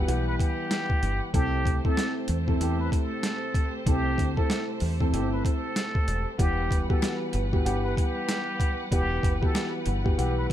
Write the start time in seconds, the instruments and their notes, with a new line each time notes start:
Already playing: string section G3 B4 F#5, grand piano F#4
0.08 fingered electric bass B1, grand piano E3 B3 G4 F#5, muted trumpet G4, closed hi-hat
0.27 muted trumpet B4
0.38 muted trumpet G4, kick, closed hi-hat
0.71 snare, closed hi-hat
0.90 kick
1.03 fingered electric bass G1, closed hi-hat
1.33 fingered electric bass C2, grand piano C3 C4 E4 A4, string section A3 G4 C5, muted trumpet G4, kick, closed hi-hat
1.66 kick, closed hi-hat
1.84 grand piano C3 C4 E4 A4, muted trumpet A4, kick
1.97 snare, closed hi-hat
2.28 fingered electric bass E2, closed hi-hat
2.47 grand piano C3 C4 E4 A4, kick
2.60 fingered electric bass E2, grand piano C3 C4 E4 A4, muted trumpet G4, closed hi-hat
2.80 muted trumpet B4
2.92 muted trumpet A4, kick, closed hi-hat
3.23 snare, closed hi-hat
3.55 kick, closed hi-hat
3.86 fingered electric bass C2, grand piano C3 C4 E4 A4, muted trumpet G4, kick, closed hi-hat
4.18 fingered electric bass D2, kick, closed hi-hat
4.35 grand piano C3 C4 E4 A4, muted trumpet A4, kick
4.50 snare, closed hi-hat
4.80 fingered electric bass E2, open hi-hat
5.00 grand piano C3 C4 E4 A4, kick
5.13 fingered electric bass G1, grand piano C3 C4 E4 A4, muted trumpet G4, closed hi-hat
5.32 muted trumpet B4
5.45 muted trumpet A4, kick, closed hi-hat
5.76 snare, closed hi-hat
5.95 kick
6.08 fingered electric bass E1, closed hi-hat
6.38 fingered electric bass E1, grand piano E3 B3 G4 F#5, string section G3 B4 F#5, muted trumpet G4, kick, closed hi-hat
6.71 kick, closed hi-hat
6.89 grand piano E3 B3 F#4 G4, muted trumpet A4, kick
7.02 finger snap, snare, closed hi-hat
7.33 fingered electric bass G1, closed hi-hat
7.52 grand piano E3 B3 F#4 G4, kick
7.65 fingered electric bass G1, grand piano E3 B3 G4 F#5, muted trumpet G4, closed hi-hat
7.84 muted trumpet B4
7.97 muted trumpet G4, kick, closed hi-hat
8.29 finger snap, snare, closed hi-hat
8.60 kick, closed hi-hat
8.91 fingered electric bass E1, grand piano E3 B3 G4 F#5, muted trumpet G4, kick, closed hi-hat
9.23 fingered electric bass F#1, kick, closed hi-hat
9.41 grand piano E3 B3 F#4 G4, muted trumpet A4, kick
9.55 finger snap, snare, closed hi-hat
9.86 fingered electric bass G1, closed hi-hat
10.04 grand piano E3 B3 F#4 G4, kick
10.18 fingered electric bass B1, grand piano E3 B3 G4 F#5, muted trumpet G4, closed hi-hat
10.38 muted trumpet B4
10.49 muted trumpet G4